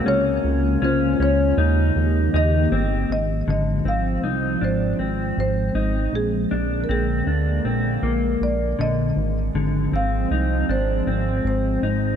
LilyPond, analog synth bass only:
\new Staff \with { instrumentName = "Analog synth bass" } { \clef bass \time 4/4 \key ees \mixolydian \tempo 4 = 79 des,8 des,8 des,8 des,8 ees,8 ees,8 ees,8 g,,8 | \key aes \lydian aes,,8 aes,,8 aes,,8 c,8 aes,,8 aes,,8 aes,,8 aes,,8 | bes,,8 bes,,8 bes,,8 d,8 bes,,8 bes,,8 bes,,8 bes,,8 | aes,,8 aes,,8 aes,,8 c,8 aes,,8 aes,,8 aes,,8 aes,,8 | }